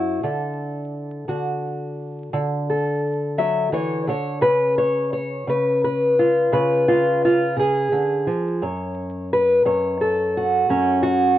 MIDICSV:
0, 0, Header, 1, 2, 480
1, 0, Start_track
1, 0, Key_signature, 3, "minor"
1, 0, Tempo, 696864
1, 167, Time_signature, 12, 3, 24, 8
1, 7841, End_track
2, 0, Start_track
2, 0, Title_t, "Steel-string acoustic guitar"
2, 0, Program_c, 0, 25
2, 0, Note_on_c, 0, 42, 68
2, 0, Note_on_c, 0, 64, 47
2, 0, Note_on_c, 0, 66, 83
2, 138, Note_off_c, 0, 64, 0
2, 158, Note_off_c, 0, 42, 0
2, 161, Note_on_c, 0, 50, 71
2, 162, Note_on_c, 0, 69, 43
2, 168, Note_off_c, 0, 66, 0
2, 872, Note_off_c, 0, 50, 0
2, 881, Note_on_c, 0, 50, 65
2, 888, Note_on_c, 0, 66, 44
2, 1598, Note_off_c, 0, 50, 0
2, 1606, Note_on_c, 0, 50, 76
2, 1849, Note_off_c, 0, 69, 0
2, 1858, Note_on_c, 0, 69, 49
2, 2328, Note_on_c, 0, 54, 61
2, 2331, Note_on_c, 0, 76, 95
2, 2562, Note_off_c, 0, 54, 0
2, 2565, Note_on_c, 0, 52, 59
2, 2571, Note_off_c, 0, 76, 0
2, 2574, Note_on_c, 0, 73, 74
2, 2798, Note_off_c, 0, 50, 0
2, 2806, Note_on_c, 0, 50, 60
2, 2809, Note_off_c, 0, 52, 0
2, 2810, Note_off_c, 0, 73, 0
2, 2818, Note_on_c, 0, 73, 85
2, 3024, Note_off_c, 0, 66, 0
2, 3028, Note_off_c, 0, 69, 0
2, 3039, Note_on_c, 0, 49, 73
2, 3042, Note_off_c, 0, 73, 0
2, 3045, Note_on_c, 0, 71, 95
2, 3050, Note_off_c, 0, 50, 0
2, 3289, Note_off_c, 0, 71, 0
2, 3292, Note_on_c, 0, 73, 84
2, 3525, Note_off_c, 0, 73, 0
2, 3533, Note_on_c, 0, 73, 88
2, 3762, Note_off_c, 0, 49, 0
2, 3770, Note_on_c, 0, 49, 59
2, 3774, Note_off_c, 0, 73, 0
2, 3785, Note_on_c, 0, 71, 87
2, 4017, Note_off_c, 0, 71, 0
2, 4025, Note_on_c, 0, 71, 70
2, 4265, Note_on_c, 0, 65, 73
2, 4485, Note_off_c, 0, 49, 0
2, 4491, Note_off_c, 0, 71, 0
2, 4493, Note_on_c, 0, 49, 73
2, 4499, Note_on_c, 0, 71, 88
2, 4732, Note_off_c, 0, 65, 0
2, 4741, Note_on_c, 0, 65, 101
2, 4977, Note_off_c, 0, 65, 0
2, 4993, Note_on_c, 0, 65, 89
2, 5203, Note_off_c, 0, 49, 0
2, 5212, Note_on_c, 0, 49, 64
2, 5216, Note_off_c, 0, 71, 0
2, 5224, Note_off_c, 0, 65, 0
2, 5231, Note_on_c, 0, 68, 95
2, 5453, Note_off_c, 0, 49, 0
2, 5455, Note_on_c, 0, 50, 69
2, 5694, Note_off_c, 0, 50, 0
2, 5695, Note_on_c, 0, 53, 63
2, 5934, Note_off_c, 0, 53, 0
2, 5937, Note_on_c, 0, 42, 66
2, 5942, Note_off_c, 0, 68, 0
2, 5942, Note_on_c, 0, 73, 49
2, 6424, Note_off_c, 0, 73, 0
2, 6427, Note_on_c, 0, 71, 80
2, 6646, Note_off_c, 0, 42, 0
2, 6649, Note_on_c, 0, 42, 68
2, 6651, Note_off_c, 0, 71, 0
2, 6654, Note_on_c, 0, 73, 72
2, 6895, Note_on_c, 0, 69, 67
2, 7131, Note_off_c, 0, 73, 0
2, 7143, Note_on_c, 0, 66, 73
2, 7358, Note_off_c, 0, 42, 0
2, 7366, Note_on_c, 0, 42, 66
2, 7368, Note_off_c, 0, 69, 0
2, 7371, Note_on_c, 0, 61, 80
2, 7588, Note_off_c, 0, 66, 0
2, 7596, Note_on_c, 0, 66, 91
2, 7841, Note_off_c, 0, 42, 0
2, 7841, Note_off_c, 0, 61, 0
2, 7841, Note_off_c, 0, 66, 0
2, 7841, End_track
0, 0, End_of_file